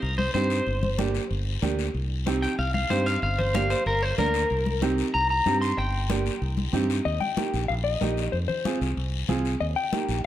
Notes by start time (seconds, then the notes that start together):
0.02 C2 A#4, high conga, long guiro
0.18 C5, high conga
0.34 G2 C4 D#4 G4 C5, high conga, short guiro
0.50 short guiro
0.66 G1, high conga, long guiro
0.83 high conga, low conga
0.98 A#3 D4 G4, high conga, short guiro
1.15 short guiro
1.30 G1, high conga, long guiro
1.62 D2 A#3 D4 G4, high conga, low conga, short guiro
1.79 short guiro
1.94 C2, high conga, long guiro
2.26 C4 D#4 G4, high conga, short guiro
2.42 G5, short guiro
2.59 C2 F5, high conga, long guiro
2.74 F5, high conga
2.90 G2 C4 D#4 G4 C5, high conga, short guiro
3.06 F5, short guiro
3.22 G1 F5, high conga, long guiro
3.38 C5, low conga
3.54 A#3 D4 G4 F5, high conga, short guiro
3.70 C5, short guiro
3.86 G1 A#4, high conga, long guiro
4.03 C5
4.18 D2 A#3 D4 A#4, high conga, low conga, short guiro
4.34 short guiro
4.50 C2, high conga, long guiro
4.66 high conga
4.82 C4 D#4 G4, high conga, short guiro
4.98 short guiro
5.14 C2 A#5, high conga, long guiro
5.30 A#5
5.46 G2 C4 D#4 G4, high conga, short guiro
5.62 C6, short guiro
5.78 G1 G5, high conga, long guiro
6.09 A#3 D4 G4, high conga, short guiro
6.26 short guiro
6.42 C2, high conga, long guiro
6.57 high conga
6.73 G2 C4 D#4 G4, high conga, low conga, short guiro
6.90 short guiro
7.05 D#2 D#5, high conga, long guiro
7.20 G5, high conga
7.37 A#3 D#4 G4, high conga, short guiro
7.54 A#1, short guiro
7.68 A#1 F5, high conga, long guiro
7.84 D#5
8.01 A#1 A#3 D#4 G4, high conga, short guiro
8.17 short guiro
8.32 F2 C5, high conga, long guiro
8.48 C5, low conga
8.65 C4 F4 G#4, high conga, short guiro
8.81 C2, short guiro
8.97 C2, high conga, long guiro
9.28 C2 C4 F4 G#4, high conga, low conga, short guiro
9.45 short guiro
9.60 D#2 D#5, high conga, long guiro
9.76 G5
9.92 A#3 D#4 G4, high conga, short guiro
10.09 A#1, short guiro